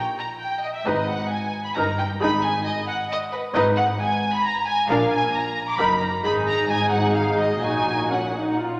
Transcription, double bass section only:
0.85 G#1
1.75 G1
2.20 G#1
3.54 G#1
4.88 A#1
5.79 F#1
6.25 G#1
7.62 A#1

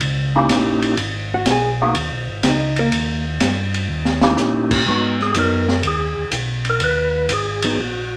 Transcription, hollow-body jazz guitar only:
1.34 F#4 F#5
1.51 G#4 G#5
2.49 D#4 D#5
2.79 A#3 A#4
4.88 F#3 B3 D#4
5.36 F#3 B3 D#4
7.64 F#3 B3 D#4

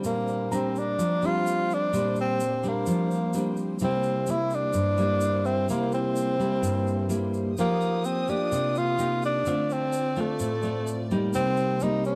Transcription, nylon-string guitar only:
Already playing: G3 C4 D4
0.04 A#2
0.51 G3 C4 D4
0.98 F3
1.23 G3 C4 D4
1.93 A#2 G3 C4 D4
2.64 G3 C4 D4
2.87 F3
3.34 G3 C4 D4
3.81 C3 G3 A#3 E4
4.28 G3 A#3 E4
4.74 G2
4.98 G3 A#3 E4
5.69 C3 G3 A#3 E4
6.39 G3 A#3 E4
6.62 G2
7.09 G3 A#3 E4
7.58 F3 A#3 D#4 G4
8.29 A#3 G4
8.52 C3
8.98 A#3 D#4 G4
9.47 D3 A3 C4 F4
10.16 A3 C4 F4
10.40 A2
10.63 A3 C4 F4
11.11 G3 A#3 D#4
11.35 C3
11.82 G3 A#3

